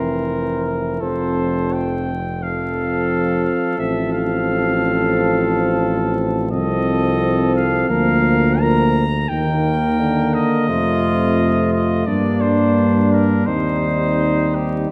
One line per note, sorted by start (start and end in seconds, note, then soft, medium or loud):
0.00 0.98 F1 medium
0.00 1.03 E3 medium
0.00 0.98 C4 medium
0.00 1.02 A#4 medium
0.00 0.64 C5 medium
1.01 3.47 F1 medium
1.01 2.15 F3 medium
1.01 2.12 C4 medium
1.01 2.14 A4 medium
1.01 1.75 C5 medium
1.73 2.44 G5 medium
2.42 3.75 F3 medium
2.42 3.75 C4 medium
2.42 3.75 A4 medium
2.42 3.44 F5 medium
3.44 3.78 F5 medium
3.78 6.54 A1 medium
3.78 6.48 F3 medium
3.78 6.48 C4 medium
3.78 6.49 A4 medium
3.78 4.12 E5 medium
4.13 6.14 F5 medium
6.51 7.89 C2 medium
6.51 7.87 F3 medium
6.51 7.91 C4 medium
6.51 7.91 A4 medium
6.51 7.51 D#5 loud
7.55 7.89 F5 medium
7.89 9.27 D2 medium
7.89 8.59 F3 medium
7.89 8.60 A#3 medium
7.89 8.60 A#4 medium
7.89 8.62 F5 loud
8.61 9.05 F3 medium
8.61 9.05 A#3 medium
8.61 9.05 A#4 medium
8.61 9.30 A#5 loud
9.29 10.39 D#2 medium
9.29 10.00 D#3 medium
9.29 10.71 A#3 medium
9.29 10.65 A#4 medium
9.29 10.35 G5 loud
9.99 10.71 D3 medium
10.34 11.71 D#5 loud
10.69 12.03 F2 medium
10.69 12.06 C3 medium
10.69 12.07 A3 medium
10.69 12.04 F4 medium
11.72 12.08 D#5 medium
12.07 13.44 G2 medium
12.07 13.44 G3 medium
12.07 13.49 A#3 medium
12.07 13.44 D4 medium
12.07 12.43 D5 medium
12.41 13.11 C5 medium
13.12 13.47 A#4 medium
13.46 14.88 D#2 medium
13.46 14.92 G3 medium
13.46 14.89 C4 medium
13.46 14.88 D#4 medium
13.46 14.56 C5 medium
14.55 14.91 G4 medium